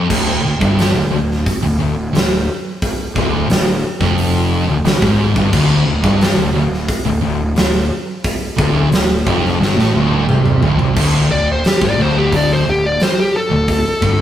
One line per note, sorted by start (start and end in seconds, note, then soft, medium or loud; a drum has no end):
0.09 0.41 D1 medium
0.09 0.42 D2 loud
0.09 kick loud
0.09 crash loud
0.43 0.59 D1 medium
0.43 0.60 D2 medium
0.61 0.93 G1 loud
0.61 0.94 G2 loud
0.61 kick loud
0.79 snare loud
0.79 open hi-hat medium
0.95 1.10 D1 medium
0.95 1.10 D2 medium
1.12 1.43 D1 medium
1.12 1.39 D2 medium
1.31 snare soft
1.46 kick loud
1.46 open hi-hat medium
1.62 1.79 D1 medium
1.62 1.78 D2 medium
1.79 2.12 D1 medium
1.79 2.06 D2 medium
2.14 2.45 D1 medium
2.14 2.41 D2 medium
2.14 snare loud
2.14 open hi-hat medium
2.82 kick loud
2.82 open hi-hat medium
3.16 3.47 D1 medium
3.16 3.49 D2 loud
3.16 kick loud
3.50 3.81 D1 medium
3.50 3.77 D2 medium
3.50 snare loud
3.50 open hi-hat medium
4.01 4.64 F1 medium
4.01 4.67 F2 loud
4.01 kick loud
4.01 snare soft
4.18 open hi-hat medium
4.68 4.83 D1 medium
4.68 4.84 D2 medium
4.84 5.00 D1 medium
4.84 5.01 D2 medium
4.84 snare loud
4.84 open hi-hat medium
5.02 5.34 G#1 loud
5.02 5.35 G#2 loud
5.02 kick loud
5.02 snare soft
5.36 5.52 G1 loud
5.36 5.52 G2 loud
5.36 kick loud
5.53 5.85 D1 medium
5.53 5.86 D2 loud
5.53 kick loud
5.53 crash loud
5.86 6.02 D1 medium
5.86 6.03 D2 medium
6.04 6.36 G1 loud
6.04 6.37 G2 loud
6.04 kick loud
6.21 snare loud
6.21 open hi-hat medium
6.37 6.53 D1 medium
6.37 6.54 D2 medium
6.54 6.86 D1 medium
6.54 6.82 D2 medium
6.74 snare soft
6.88 kick loud
6.88 open hi-hat medium
7.05 7.21 D1 medium
7.05 7.21 D2 medium
7.22 7.55 D1 medium
7.22 7.50 D2 medium
7.56 7.88 D1 medium
7.56 7.83 D2 medium
7.56 snare loud
7.56 open hi-hat medium
8.24 kick loud
8.24 open hi-hat medium
8.57 8.90 D1 medium
8.57 8.91 D2 loud
8.57 kick loud
8.92 9.24 D1 medium
8.92 9.20 D2 medium
8.92 snare loud
8.92 open hi-hat medium
9.26 9.58 F1 medium
9.26 9.59 F2 loud
9.26 kick loud
9.45 snare soft
9.60 9.76 G1 loud
9.60 9.76 G2 loud
9.60 snare medium
9.77 9.93 A1 medium
9.77 9.93 A2 loud
9.77 snare medium
9.94 10.26 D1 medium
9.94 10.27 D2 loud
9.94 high tom medium
10.11 high tom medium
10.27 10.60 C2 medium
10.27 10.61 C3 loud
10.27 mid tom medium
10.46 mid tom medium
10.62 10.78 D1 medium
10.62 10.78 D2 loud
10.62 floor tom loud
10.78 10.95 C2 medium
10.78 10.95 C3 loud
10.78 floor tom medium
10.95 11.28 D1 loud
10.95 11.28 D2 loud
10.95 kick loud
10.95 crash loud
11.29 11.62 D1 medium
11.29 11.57 D2 medium
11.29 11.48 D5 loud
11.52 11.66 C5 medium
11.64 11.82 G4 medium
11.64 snare loud
11.64 open hi-hat medium
11.81 11.97 G#1 medium
11.81 11.97 G#2 loud
11.81 kick loud
11.85 12.00 D5 medium
11.97 12.62 D1 medium
11.97 12.64 D2 loud
12.02 12.17 C5 medium
12.18 12.33 G4 medium
12.32 12.51 D5 medium
12.32 kick medium
12.32 open hi-hat medium
12.53 12.68 C5 medium
12.65 12.98 D1 medium
12.65 12.93 D2 medium
12.70 12.84 G4 medium
12.86 13.01 D5 loud
13.00 13.18 C5 medium
13.00 snare loud
13.00 open hi-hat medium
13.20 13.35 G4 medium
13.37 14.21 A4 loud
13.51 13.83 D1 medium
13.51 13.78 D2 medium
13.68 kick loud
13.68 open hi-hat medium
14.02 14.21 G1 medium
14.02 14.21 G2 medium
14.02 kick loud